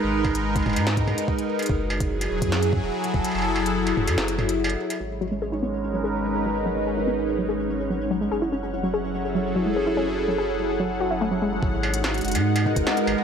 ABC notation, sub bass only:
X:1
M:4/4
L:1/16
Q:1/4=145
K:G#m
V:1 name="Sub bass" clef=bass
G,,,6 F,,, G,,4 z4 z | F,,,6 E,,, F,,4 E,,, z2 F,,, z | F,,,6 E,,, F,, F,,,6 z2 | G,,,16- |
G,,,16 | F,,,16- | F,,,16 | G,,,6 F,,, G,,4 F,,, z2 G,,, z |]